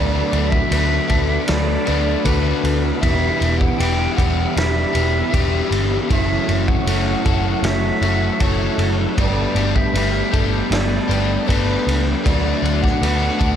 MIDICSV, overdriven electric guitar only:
0, 0, Header, 1, 2, 480
1, 0, Start_track
1, 0, Key_signature, 2, "major"
1, 0, Tempo, 769231
1, 1888, Time_signature, 4, 2, 24, 8
1, 8463, End_track
2, 0, Start_track
2, 0, Title_t, "Overdriven electric guitar"
2, 0, Program_c, 0, 29
2, 0, Note_on_c, 0, 50, 86
2, 0, Note_on_c, 0, 57, 96
2, 0, Note_on_c, 0, 62, 89
2, 0, Note_on_c, 0, 66, 83
2, 188, Note_off_c, 0, 66, 0
2, 196, Note_on_c, 0, 66, 63
2, 207, Note_off_c, 0, 62, 0
2, 209, Note_on_c, 0, 62, 73
2, 211, Note_off_c, 0, 57, 0
2, 219, Note_on_c, 0, 57, 58
2, 428, Note_off_c, 0, 50, 0
2, 436, Note_off_c, 0, 57, 0
2, 436, Note_on_c, 0, 50, 66
2, 443, Note_on_c, 0, 57, 61
2, 449, Note_off_c, 0, 62, 0
2, 451, Note_on_c, 0, 62, 78
2, 453, Note_off_c, 0, 66, 0
2, 460, Note_on_c, 0, 66, 80
2, 663, Note_off_c, 0, 66, 0
2, 671, Note_on_c, 0, 66, 59
2, 685, Note_off_c, 0, 62, 0
2, 686, Note_off_c, 0, 57, 0
2, 687, Note_on_c, 0, 62, 57
2, 694, Note_on_c, 0, 57, 54
2, 922, Note_off_c, 0, 50, 0
2, 1150, Note_off_c, 0, 66, 0
2, 1158, Note_on_c, 0, 66, 65
2, 1164, Note_off_c, 0, 62, 0
2, 1172, Note_on_c, 0, 62, 56
2, 1173, Note_off_c, 0, 57, 0
2, 1181, Note_on_c, 0, 57, 48
2, 1403, Note_off_c, 0, 57, 0
2, 1404, Note_on_c, 0, 50, 81
2, 1410, Note_on_c, 0, 57, 80
2, 1411, Note_off_c, 0, 62, 0
2, 1417, Note_off_c, 0, 66, 0
2, 1419, Note_on_c, 0, 62, 85
2, 1425, Note_on_c, 0, 66, 77
2, 1871, Note_off_c, 0, 50, 0
2, 1875, Note_off_c, 0, 57, 0
2, 1879, Note_off_c, 0, 62, 0
2, 1881, Note_on_c, 0, 40, 94
2, 1882, Note_off_c, 0, 66, 0
2, 1886, Note_on_c, 0, 47, 79
2, 1889, Note_on_c, 0, 52, 90
2, 1895, Note_on_c, 0, 55, 81
2, 1900, Note_on_c, 0, 59, 86
2, 1900, Note_on_c, 0, 67, 102
2, 2104, Note_off_c, 0, 67, 0
2, 2112, Note_on_c, 0, 67, 72
2, 2116, Note_off_c, 0, 59, 0
2, 2123, Note_off_c, 0, 55, 0
2, 2123, Note_on_c, 0, 59, 63
2, 2130, Note_on_c, 0, 55, 65
2, 2137, Note_off_c, 0, 52, 0
2, 2139, Note_on_c, 0, 52, 58
2, 2357, Note_off_c, 0, 52, 0
2, 2358, Note_off_c, 0, 55, 0
2, 2359, Note_on_c, 0, 52, 63
2, 2365, Note_off_c, 0, 40, 0
2, 2365, Note_on_c, 0, 55, 60
2, 2367, Note_off_c, 0, 47, 0
2, 2367, Note_off_c, 0, 59, 0
2, 2374, Note_on_c, 0, 59, 69
2, 2376, Note_off_c, 0, 67, 0
2, 2384, Note_on_c, 0, 67, 78
2, 2589, Note_off_c, 0, 67, 0
2, 2596, Note_on_c, 0, 67, 71
2, 2597, Note_off_c, 0, 59, 0
2, 2603, Note_off_c, 0, 55, 0
2, 2604, Note_on_c, 0, 59, 61
2, 2610, Note_on_c, 0, 55, 61
2, 2618, Note_off_c, 0, 52, 0
2, 2621, Note_on_c, 0, 52, 58
2, 3066, Note_off_c, 0, 67, 0
2, 3074, Note_on_c, 0, 67, 56
2, 3079, Note_off_c, 0, 59, 0
2, 3080, Note_off_c, 0, 55, 0
2, 3086, Note_on_c, 0, 59, 50
2, 3087, Note_off_c, 0, 52, 0
2, 3087, Note_on_c, 0, 55, 51
2, 3095, Note_on_c, 0, 52, 46
2, 3298, Note_off_c, 0, 52, 0
2, 3306, Note_on_c, 0, 52, 71
2, 3314, Note_off_c, 0, 55, 0
2, 3317, Note_off_c, 0, 59, 0
2, 3322, Note_on_c, 0, 55, 77
2, 3324, Note_off_c, 0, 67, 0
2, 3324, Note_on_c, 0, 59, 84
2, 3332, Note_on_c, 0, 67, 89
2, 3783, Note_off_c, 0, 52, 0
2, 3791, Note_off_c, 0, 55, 0
2, 3792, Note_off_c, 0, 59, 0
2, 3796, Note_off_c, 0, 67, 0
2, 3800, Note_on_c, 0, 42, 91
2, 3802, Note_on_c, 0, 49, 93
2, 3806, Note_on_c, 0, 54, 92
2, 3812, Note_on_c, 0, 57, 88
2, 3813, Note_on_c, 0, 61, 92
2, 3819, Note_on_c, 0, 66, 89
2, 4026, Note_off_c, 0, 66, 0
2, 4034, Note_on_c, 0, 66, 72
2, 4036, Note_off_c, 0, 61, 0
2, 4043, Note_on_c, 0, 61, 63
2, 4046, Note_off_c, 0, 57, 0
2, 4048, Note_on_c, 0, 57, 57
2, 4049, Note_off_c, 0, 54, 0
2, 4057, Note_on_c, 0, 54, 58
2, 4272, Note_off_c, 0, 54, 0
2, 4279, Note_on_c, 0, 54, 71
2, 4284, Note_off_c, 0, 42, 0
2, 4285, Note_off_c, 0, 49, 0
2, 4285, Note_off_c, 0, 57, 0
2, 4285, Note_off_c, 0, 61, 0
2, 4288, Note_on_c, 0, 57, 67
2, 4291, Note_off_c, 0, 66, 0
2, 4293, Note_on_c, 0, 61, 75
2, 4299, Note_on_c, 0, 66, 80
2, 4515, Note_off_c, 0, 66, 0
2, 4522, Note_on_c, 0, 66, 69
2, 4523, Note_off_c, 0, 61, 0
2, 4531, Note_on_c, 0, 61, 57
2, 4534, Note_off_c, 0, 57, 0
2, 4536, Note_off_c, 0, 54, 0
2, 4537, Note_on_c, 0, 57, 56
2, 4544, Note_on_c, 0, 54, 56
2, 4997, Note_off_c, 0, 66, 0
2, 5004, Note_on_c, 0, 66, 59
2, 5005, Note_off_c, 0, 61, 0
2, 5013, Note_on_c, 0, 61, 55
2, 5015, Note_off_c, 0, 57, 0
2, 5017, Note_on_c, 0, 57, 52
2, 5018, Note_off_c, 0, 54, 0
2, 5025, Note_on_c, 0, 54, 52
2, 5238, Note_off_c, 0, 54, 0
2, 5245, Note_on_c, 0, 54, 82
2, 5251, Note_off_c, 0, 57, 0
2, 5253, Note_on_c, 0, 57, 77
2, 5254, Note_off_c, 0, 61, 0
2, 5261, Note_off_c, 0, 66, 0
2, 5262, Note_on_c, 0, 61, 80
2, 5269, Note_on_c, 0, 66, 79
2, 5712, Note_off_c, 0, 54, 0
2, 5720, Note_off_c, 0, 61, 0
2, 5724, Note_off_c, 0, 66, 0
2, 5724, Note_on_c, 0, 43, 81
2, 5731, Note_on_c, 0, 50, 89
2, 5734, Note_on_c, 0, 55, 86
2, 5736, Note_off_c, 0, 57, 0
2, 5738, Note_on_c, 0, 59, 88
2, 5741, Note_on_c, 0, 62, 93
2, 5745, Note_on_c, 0, 67, 98
2, 5955, Note_off_c, 0, 67, 0
2, 5963, Note_on_c, 0, 67, 81
2, 5972, Note_off_c, 0, 62, 0
2, 5975, Note_off_c, 0, 55, 0
2, 5975, Note_off_c, 0, 59, 0
2, 5975, Note_on_c, 0, 62, 60
2, 5977, Note_on_c, 0, 59, 61
2, 5983, Note_on_c, 0, 55, 61
2, 6197, Note_off_c, 0, 55, 0
2, 6204, Note_on_c, 0, 55, 69
2, 6205, Note_off_c, 0, 43, 0
2, 6208, Note_off_c, 0, 59, 0
2, 6209, Note_off_c, 0, 50, 0
2, 6211, Note_on_c, 0, 59, 72
2, 6216, Note_off_c, 0, 67, 0
2, 6219, Note_off_c, 0, 62, 0
2, 6221, Note_on_c, 0, 62, 75
2, 6224, Note_on_c, 0, 67, 69
2, 6428, Note_off_c, 0, 67, 0
2, 6435, Note_on_c, 0, 67, 64
2, 6443, Note_off_c, 0, 62, 0
2, 6446, Note_on_c, 0, 62, 63
2, 6448, Note_off_c, 0, 59, 0
2, 6449, Note_off_c, 0, 55, 0
2, 6450, Note_on_c, 0, 59, 59
2, 6457, Note_on_c, 0, 55, 56
2, 6906, Note_off_c, 0, 67, 0
2, 6913, Note_on_c, 0, 67, 65
2, 6919, Note_off_c, 0, 62, 0
2, 6921, Note_on_c, 0, 62, 57
2, 6925, Note_off_c, 0, 55, 0
2, 6928, Note_off_c, 0, 59, 0
2, 6930, Note_on_c, 0, 59, 52
2, 6933, Note_on_c, 0, 55, 46
2, 7147, Note_off_c, 0, 55, 0
2, 7154, Note_on_c, 0, 55, 74
2, 7160, Note_off_c, 0, 59, 0
2, 7163, Note_off_c, 0, 67, 0
2, 7163, Note_on_c, 0, 59, 79
2, 7167, Note_off_c, 0, 62, 0
2, 7170, Note_on_c, 0, 62, 80
2, 7171, Note_on_c, 0, 67, 81
2, 7625, Note_off_c, 0, 55, 0
2, 7634, Note_off_c, 0, 67, 0
2, 7636, Note_on_c, 0, 50, 88
2, 7639, Note_off_c, 0, 59, 0
2, 7641, Note_on_c, 0, 57, 87
2, 7645, Note_off_c, 0, 62, 0
2, 7648, Note_on_c, 0, 62, 96
2, 7660, Note_on_c, 0, 66, 103
2, 7868, Note_off_c, 0, 66, 0
2, 7875, Note_on_c, 0, 66, 69
2, 7883, Note_off_c, 0, 62, 0
2, 7890, Note_off_c, 0, 57, 0
2, 7890, Note_on_c, 0, 62, 63
2, 7898, Note_on_c, 0, 57, 55
2, 8114, Note_off_c, 0, 50, 0
2, 8121, Note_on_c, 0, 50, 68
2, 8124, Note_off_c, 0, 57, 0
2, 8125, Note_off_c, 0, 62, 0
2, 8131, Note_on_c, 0, 57, 73
2, 8133, Note_on_c, 0, 62, 74
2, 8134, Note_off_c, 0, 66, 0
2, 8141, Note_on_c, 0, 66, 80
2, 8344, Note_off_c, 0, 66, 0
2, 8351, Note_on_c, 0, 66, 70
2, 8356, Note_off_c, 0, 62, 0
2, 8363, Note_off_c, 0, 57, 0
2, 8363, Note_on_c, 0, 62, 68
2, 8370, Note_on_c, 0, 57, 50
2, 8463, Note_off_c, 0, 50, 0
2, 8463, Note_off_c, 0, 57, 0
2, 8463, Note_off_c, 0, 62, 0
2, 8463, Note_off_c, 0, 66, 0
2, 8463, End_track
0, 0, End_of_file